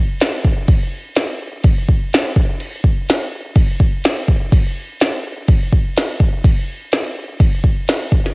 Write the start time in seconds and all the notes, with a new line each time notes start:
0.20 snare, crash
0.45 kick
0.68 kick, crash
1.15 snare, crash
1.63 kick, crash
1.88 kick
2.13 snare, crash
2.36 kick
2.60 crash
2.84 kick
3.09 snare, crash
3.55 kick, crash
3.80 kick
4.04 snare, crash
4.28 kick
4.52 kick, crash
5.00 snare, crash
5.48 kick, crash
5.73 kick
5.96 snare, crash
6.20 kick
6.44 kick, crash
6.92 snare, crash
7.40 kick, crash
7.64 kick
7.88 snare, crash
8.12 kick
8.26 snare